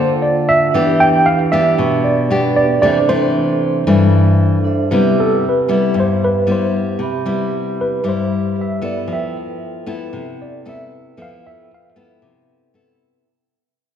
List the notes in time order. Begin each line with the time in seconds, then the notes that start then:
Already playing: D3 A#3 F4 A4 C5 G5
0.22 D5
0.49 E5
0.71 E3 B3 D4 G4 B4
0.77 E5
1.00 G5
1.26 F5
1.52 B3 D4 G4 E5
1.78 B2
2.04 D5
2.31 B3 D4 G4
2.55 D4 G4 B4 D5 E5
2.79 C3 E3 A3 D4 A4 C5 D5
2.84 D4 E5
3.09 E3 A3 D4 C5
3.87 G2 E3 A3 D4
4.64 D4 A4 C5 E5
4.90 C3 G3 B3 E4 G4 B4
4.94 E5
5.20 A4
5.49 B4
5.68 G3 B3 E4
5.94 G2
6.00 C5
6.24 B4
6.47 G3 B3 E4
6.52 C5
6.99 C3 G4 B5
7.03 E5
7.26 G3 B3 E4
7.81 B4
8.04 G2 G3 E4
8.08 C5
8.56 G4 B4 E5
8.61 E5
8.82 B3 E4 A4 D5
9.08 F3 A4 B4 E5
9.12 E5 G5
9.86 B3 E4 A4
10.13 C3
10.42 D5
10.66 B3 E4 A4 E5
11.16 F3 B3 E4 A4 B4 E5
11.20 F5 G5
11.47 E5
11.74 F5
11.96 B3 E4 A4
12.22 C3
12.74 B3 E4 A4